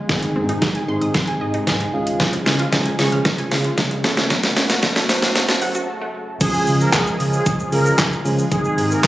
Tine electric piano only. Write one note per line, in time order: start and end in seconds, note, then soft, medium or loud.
0.09 0.47 G#3 medium
0.09 0.47 C4 medium
0.09 0.47 D#4 medium
0.09 0.47 G#4 medium
0.62 0.81 G#3 medium
0.62 0.81 C4 medium
0.62 0.81 D#4 medium
0.62 0.81 G#4 loud
0.88 1.64 G#3 medium
0.88 1.64 C4 medium
0.88 1.64 D#4 medium
0.88 1.64 G#4 medium
1.67 1.92 G#5 medium
1.93 2.57 G#3 medium
1.93 2.57 C#4 medium
1.93 2.57 F4 medium
1.93 2.57 G#4 loud
1.93 2.18 F5 medium
2.73 2.92 G#3 medium
2.73 2.92 C#4 medium
2.73 2.92 F4 medium
2.73 2.92 G#4 medium
2.99 3.75 G#3 medium
2.99 3.75 C#4 medium
2.99 3.75 F4 medium
2.99 3.75 G#4 medium
4.04 4.67 A3 medium
4.04 4.67 C#4 medium
4.04 4.67 F#4 medium
4.04 4.67 A4 loud
4.83 5.02 A3 medium
4.83 5.02 C#4 medium
4.83 5.02 F#4 medium
4.83 5.02 A4 medium
5.09 5.85 A3 medium
5.09 5.85 C#4 medium
5.09 5.85 F#4 medium
5.09 5.85 C5 loud
6.41 7.17 F3 medium
6.41 7.17 G#3 medium
6.41 7.17 C#4 medium
6.41 7.17 F4 medium
6.41 7.17 G#4 medium
7.72 8.10 F3 medium
7.72 8.10 G#3 medium
7.72 8.10 C#4 medium
7.72 8.11 F4 medium
7.72 8.11 G#4 medium
8.25 8.44 F3 medium
8.25 8.44 G#3 medium
8.25 8.44 C#4 medium
8.25 8.44 F4 medium
8.25 8.44 G#4 loud
8.51 9.07 D#3 medium
8.51 9.07 G#3 medium
8.51 9.07 C4 medium
8.51 9.07 D#4 medium
8.51 9.07 G#4 medium